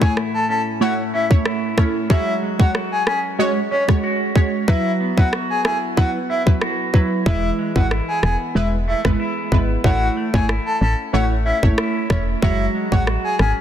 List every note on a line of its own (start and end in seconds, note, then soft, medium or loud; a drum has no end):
0.00 2.10 A2 medium
0.00 0.44 E3 medium
0.00 0.80 A3 medium
0.00 0.21 A3 medium
0.00 0.16 E4 medium
0.00 0.21 E4 medium
0.00 0.21 C#5 medium
0.00 0.13 G#5 medium
0.00 kick medium
0.17 1.45 E4 medium
0.17 cross-stick medium
0.34 0.45 A5 medium
0.49 1.13 C#4 medium
0.49 0.62 A5 medium
0.81 1.02 A3 medium
0.81 2.17 A3 medium
0.81 1.02 E4 medium
0.81 1.02 C#5 loud
0.81 0.94 F#5 medium
1.14 1.78 C#4 medium
1.14 1.26 E5 medium
1.30 1.74 A3 medium
1.30 1.74 E4 medium
1.30 1.74 C#5 medium
1.30 kick medium
1.46 2.10 E4 medium
1.46 cross-stick medium
1.77 2.07 A3 medium
1.77 3.07 C#4 medium
1.77 2.08 E4 medium
1.77 2.08 C#5 medium
1.77 kick medium
1.77 cross-stick medium
2.10 4.68 F#3 medium
2.10 2.55 G#3 medium
2.10 2.55 F#4 medium
2.10 2.74 F#4 medium
2.10 2.55 C#5 loud
2.10 2.34 E5 loud
2.10 kick loud
2.42 3.38 G#3 medium
2.59 2.78 G#3 medium
2.59 2.79 F#4 medium
2.59 2.79 C#5 medium
2.59 2.71 F#5 medium
2.59 kick medium
2.75 4.03 F#4 medium
2.75 cross-stick medium
2.92 3.03 G#5 medium
3.07 3.70 C#4 medium
3.07 3.19 G#5 medium
3.07 cross-stick medium
3.39 3.60 G#3 medium
3.39 4.75 G#3 medium
3.39 3.60 F#4 medium
3.39 3.52 C#5 medium
3.39 3.60 C#5 loud
3.71 4.35 C#4 medium
3.71 3.83 C#5 medium
3.88 4.32 G#3 medium
3.88 4.32 F#4 medium
3.88 4.32 C#5 medium
3.88 kick medium
3.88 cross-stick medium
4.04 4.68 F#4 medium
4.35 4.66 G#3 medium
4.35 4.75 C#4 medium
4.35 4.66 F#4 medium
4.35 4.66 C#5 medium
4.35 kick medium
4.68 5.13 F#3 medium
4.68 7.26 F#3 medium
4.68 5.13 E4 medium
4.68 5.32 F#4 medium
4.68 5.13 B4 loud
4.68 4.92 E5 loud
4.68 kick loud
5.00 5.97 B3 medium
5.17 5.37 F#3 medium
5.17 5.37 E4 medium
5.17 5.37 B4 medium
5.17 5.29 F#5 medium
5.17 kick medium
5.33 6.61 F#4 medium
5.33 cross-stick medium
5.50 5.61 G#5 medium
5.65 6.29 E4 medium
5.65 5.77 G#5 medium
5.65 cross-stick medium
5.97 6.18 F#3 medium
5.97 7.58 B3 medium
5.97 6.18 E4 medium
5.97 6.18 B4 loud
5.97 6.10 F#5 medium
5.97 kick loud
6.30 6.94 E4 medium
6.30 6.42 E5 medium
6.46 6.90 F#3 medium
6.46 6.90 E4 medium
6.46 6.90 B4 medium
6.46 kick medium
6.62 7.26 F#4 medium
6.62 cross-stick medium
6.93 7.24 F#3 medium
6.93 7.24 E4 medium
6.93 7.27 E4 medium
6.93 7.24 B4 medium
6.93 kick medium
7.26 7.52 E1 loud
7.26 10.76 E3 medium
7.26 7.71 G#3 loud
7.26 7.71 E4 medium
7.26 7.90 E4 medium
7.26 7.72 B4 loud
7.26 7.50 E5 loud
7.26 kick loud
7.59 8.54 G#3 medium
7.75 8.01 G#1 medium
7.75 7.95 G#3 medium
7.75 7.95 E4 medium
7.75 7.95 B4 medium
7.75 7.87 F#5 medium
7.75 kick medium
7.91 9.19 E4 medium
7.91 cross-stick medium
8.08 8.19 G#5 medium
8.23 8.37 E1 medium
8.23 8.87 B3 medium
8.23 8.36 G#5 medium
8.23 cross-stick medium
8.55 8.94 E1 loud
8.55 8.76 G#3 loud
8.55 9.91 G#3 medium
8.55 8.76 E4 medium
8.55 8.76 B4 loud
8.55 8.68 E5 medium
8.88 9.04 A3 medium
8.88 9.00 E5 medium
9.04 9.17 G#1 medium
9.04 9.48 G#3 medium
9.04 9.51 B3 medium
9.04 9.49 E4 medium
9.04 9.49 B4 medium
9.04 kick medium
9.04 cross-stick medium
9.20 9.85 E4 medium
9.52 9.78 G#1 medium
9.52 9.82 G#3 medium
9.52 9.91 B3 medium
9.52 9.82 E4 medium
9.52 9.82 B4 medium
9.52 kick medium
9.84 10.10 A1 loud
9.84 10.30 A3 loud
9.84 10.30 E4 medium
9.84 10.48 E4 medium
9.84 10.30 C#5 loud
9.84 10.08 F#5 loud
9.84 kick loud
10.17 11.12 A3 medium
10.34 10.59 G#1 medium
10.34 10.53 A3 medium
10.34 10.53 E4 medium
10.34 10.53 C#5 medium
10.34 10.45 G#5 medium
10.34 kick medium
10.49 11.77 E4 medium
10.49 cross-stick medium
10.66 10.77 A5 medium
10.81 10.95 A1 medium
10.81 11.46 C#4 medium
10.81 10.94 A5 medium
11.13 11.53 A1 medium
11.13 11.34 A3 loud
11.13 12.49 A3 medium
11.13 11.34 E4 medium
11.13 11.34 C#5 loud
11.13 11.26 F#5 medium
11.45 12.10 C#4 medium
11.45 11.58 E5 medium
11.63 11.75 G#1 medium
11.63 12.06 A3 medium
11.63 12.07 E4 medium
11.63 12.07 C#5 medium
11.63 kick medium
11.78 12.43 E4 medium
11.78 cross-stick loud
12.10 12.36 E1 medium
12.10 12.40 A3 medium
12.10 13.39 C#4 medium
12.10 12.40 E4 medium
12.10 12.40 C#5 medium
12.10 kick medium
12.10 cross-stick medium
12.42 12.68 F#1 loud
12.42 13.61 F#3 medium
12.42 12.88 G#3 medium
12.42 12.88 F#4 medium
12.42 13.07 F#4 medium
12.42 12.88 C#5 loud
12.42 12.66 E5 loud
12.42 kick loud
12.75 13.61 G#3 medium
12.91 13.18 A1 medium
12.91 13.11 G#3 medium
12.91 13.11 F#4 medium
12.91 13.11 C#5 medium
12.91 13.03 F#5 medium
12.91 kick medium
13.07 13.61 F#4 medium
13.07 cross-stick medium
13.24 13.35 G#5 medium
13.39 13.53 G#1 medium
13.39 13.61 C#4 medium
13.39 13.52 G#5 medium
13.39 cross-stick medium